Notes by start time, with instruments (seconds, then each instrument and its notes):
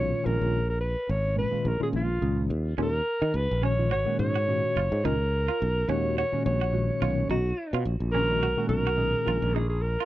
Already playing: fretless electric bass B1, tine electric piano A#2 D#3 G#3 C#4 F4, alto saxophone C#5
0.23 fretless electric bass A#1, tine electric piano A#2 D#3 G#3 C#4 F4, alto saxophone A#4
0.41 fretless electric bass A#1
0.68 tine electric piano F4, alto saxophone A#4
0.81 alto saxophone B4
1.08 fretless electric bass G#1, tine electric piano C#4 F4, alto saxophone C#5
1.23 tine electric piano C#4 D#4
1.36 tine electric piano A#2 D#3 G#3 C#4 F4, alto saxophone B4
1.51 tine electric piano A#2 D#3 G#3 C#4 F4, muted fretless electric bass stroke
1.65 fretless electric bass A#1, alto saxophone A#4
1.79 tine electric piano A#2 D#3 G#3 C#4 F4, alto saxophone G#4, muted fretless electric bass stroke
1.93 fretless electric bass A#1, alto saxophone F4
2.20 fretless electric bass C#2, tine electric piano A#2 D#3 G#3 C#4 G#4
2.50 fretless electric bass D#2
2.65 tine electric piano C#4 F4
2.78 fretless electric bass D#2, tine electric piano A#2 D#3 G#3 C#4 F4, clean electric guitar C#4
2.83 alto saxophone A#4
3.22 fretless electric bass D#3, clean electric guitar D#4
3.34 fretless electric bass C#2, tine electric piano C#4 F4, alto saxophone B4
3.48 fretless electric bass A#1, tine electric piano C#4 D#4
3.61 tine electric piano A#2 D#3 G#3 C#4 F#4, clean electric guitar C#4, alto saxophone C#5
3.78 tine electric piano A#2 D#3 G#3 C#4 F4
3.91 fretless electric bass G#1, clean electric guitar F#4, alto saxophone C#5
4.05 tine electric piano A#2 D#3 G#3 C#4 F#4
4.19 fretless electric bass G#2, alto saxophone C#5
4.35 clean electric guitar F#4
4.48 tine electric piano A#2 D#3 G#3 C#4 F#4
4.76 fretless electric bass F#1, clean electric guitar F4
4.90 fretless electric bass G#2, tine electric piano C#4 F#4
5.03 fretless electric bass C#2, tine electric piano A#2 D#3 G#3 C#4 F4, clean electric guitar D#4, alto saxophone A#4
5.48 clean electric guitar F4
5.60 fretless electric bass B1, tine electric piano C#4 G#4
5.75 tine electric piano C#4 F4
5.88 fretless electric bass D#2, tine electric piano A#2 D#3 G#3 C#4 F#4, clean electric guitar C#4, alto saxophone C#5
6.18 clean electric guitar F#4, alto saxophone C#5
6.32 tine electric piano A#2 D#3 G#3 C#4 F#4, muted fretless electric bass stroke
6.46 fretless electric bass A#1, alto saxophone C#5
6.61 clean electric guitar F#4
6.72 tine electric piano A#2 D#3 G#3 C#4 F#4
7.00 fretless electric bass B1, tine electric piano A#2 D#3 G#3 C#4 F#4, clean electric guitar F4, alto saxophone C#5
7.30 fretless electric bass B1, clean electric guitar D#4, alto saxophone F#4
7.45 tine electric piano C#4 F#4
7.73 fretless electric bass B2, clean electric guitar F4
7.85 fretless electric bass A#1, tine electric piano C#4 F#4
8.00 fretless electric bass A#1, tine electric piano C#4 D#4
8.12 tine electric piano A#2 D#3 G#3 C#4 F#4, clean electric guitar C#4, alto saxophone A#4
8.28 tine electric piano A#2 D#3 G#3 C#4 F#4
8.41 fretless electric bass B1, clean electric guitar F#4
8.57 tine electric piano A#2 D#3 G#3 C#4 F#4
8.69 fretless electric bass B1, alto saxophone A#4
8.87 clean electric guitar F#4
8.96 tine electric piano A#2 D#3 G#3 C#4 G#4
9.25 fretless electric bass A#1, tine electric piano A#2 D#3 G#3 C#4 F4, clean electric guitar F4
9.42 fretless electric bass A#1
9.55 clean electric guitar D#4, alto saxophone G#4
9.70 tine electric piano C#4 F4, alto saxophone G#4
9.82 alto saxophone A#4
10.00 clean electric guitar F4